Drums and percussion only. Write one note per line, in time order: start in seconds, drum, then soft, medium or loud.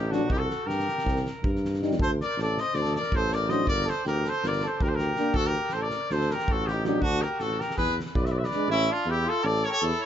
0.12 snare soft
0.30 kick medium
0.50 snare soft
0.69 snare soft
0.79 snare soft
0.88 snare soft
0.98 snare soft
1.06 kick medium
1.06 snare soft
1.16 snare soft
1.26 snare soft
1.44 kick medium
1.56 snare soft
1.65 snare soft
1.74 snare soft
1.82 snare soft
1.91 snare soft
2.00 kick medium
2.21 snare soft
2.39 snare soft
2.57 snare soft
2.74 snare soft
2.84 snare soft
2.95 snare soft
3.03 snare soft
3.12 kick medium
3.32 snare soft
3.49 snare soft
3.67 kick medium
3.87 snare soft
4.06 snare soft
4.25 snare soft
4.44 snare soft
4.52 snare soft
4.60 snare soft
4.80 kick medium
4.99 snare soft
5.16 snare soft
5.34 kick medium
5.53 snare soft
5.69 snare soft
5.90 snare soft
6.10 snare soft
6.21 snare soft
6.30 snare soft
6.39 snare soft
6.48 kick medium
6.68 snare soft
6.84 snare soft
7.02 kick medium
7.22 snare soft
7.40 snare soft
7.61 snare soft
7.70 snare soft
7.77 kick medium
7.77 snare soft
7.89 snare soft
8.00 snare soft
8.06 snare soft
8.15 kick medium
8.25 snare soft
8.44 snare soft
8.51 snare soft